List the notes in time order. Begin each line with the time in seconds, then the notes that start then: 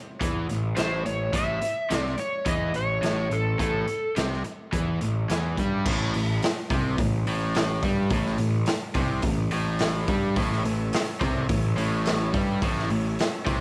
0.21 E2 E3, kick, closed hi-hat
0.49 A1 A2, closed hi-hat
0.77 A1 A2 C5, snare, closed hi-hat
1.06 A1 A2 C#5, closed hi-hat
1.33 A1 A2 E5, kick, closed hi-hat
1.62 muted overdriven electric guitar stroke, muted picked electric bass stroke, closed hi-hat
1.90 C2 C3, snare, closed hi-hat
1.97 D5
2.06 snare
2.18 C#5, muted picked electric bass stroke, muted overdriven electric guitar stroke, closed hi-hat
2.46 E2 E3 D#5, kick, closed hi-hat
2.74 A1 A2 C#5, closed hi-hat
3.02 A1 A2, snare, closed hi-hat
3.31 A1 A2 A4, closed hi-hat
3.59 A1 A2 A4, kick, closed hi-hat
3.88 muted overdriven electric guitar stroke, muted picked electric bass stroke, closed hi-hat
4.16 C2 C3, snare, closed hi-hat
4.33 snare
4.44 muted overdriven electric guitar stroke, muted picked electric bass stroke, closed hi-hat
4.73 E2 E3, kick, closed hi-hat
5.01 A1 A2, closed hi-hat
5.30 E2 E3, snare, closed hi-hat
5.57 G2 G3, kick, closed hi-hat
5.86 A1 A2, kick, crash
6.14 A1 A2, open hi-hat
6.42 snare, open hi-hat
6.70 C2 C3, kick, open hi-hat
6.98 A1 A2, kick, open hi-hat
7.27 A1 A2, open hi-hat
7.55 snare, open hi-hat
7.83 G2 G3, kick, open hi-hat
8.10 A1 A2, kick, open hi-hat
8.26 snare
8.38 A1 A2, open hi-hat
8.66 snare, open hi-hat
8.94 C2 C3, kick, open hi-hat
9.22 A1 A2, kick, open hi-hat
9.51 A1 A2, open hi-hat
9.79 snare, open hi-hat
10.08 G2 G3, kick, open hi-hat
10.36 A1 A2 C#4 E4 A4 C#5, kick, open hi-hat
10.53 snare
10.65 A1 A2, open hi-hat
10.93 snare, open hi-hat
11.21 C2 C3, kick, open hi-hat
11.49 A1 A2, kick, open hi-hat
11.77 A1 A2, open hi-hat
12.06 snare, open hi-hat
12.33 G2 G3, kick, open hi-hat
12.60 A1 A2 C#4 E4 A4 C#5, kick, open hi-hat
12.79 snare
12.90 A1 A2, open hi-hat
13.19 snare, open hi-hat
13.46 C2 C3, kick, open hi-hat